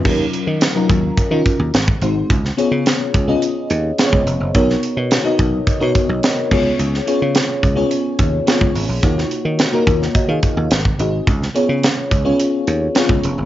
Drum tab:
CC |x---------------|----------------|--------------x-|----------------|
HH |--x-x-x-x-x-x-x-|x-x-x-x-x-x-x-x-|x-x-x-x-x-x-x---|x-x-x-x-x-x-x-o-|
SD |----o-------o---|-o--o-------o---|-o--o-------o---|-o--o-------o---|
BD |o-----o-o-o--o--|o-----o------o--|o-----o-o-o---o-|------o---o--o--|

CC |----------------|----------------|
HH |x-x-x-x-x-x-x-x-|x-x-x-x-x-x-x-x-|
SD |-o--o--o----o---|-o--o-------o---|
BD |o-----o-o-o--o--|o-----o------o--|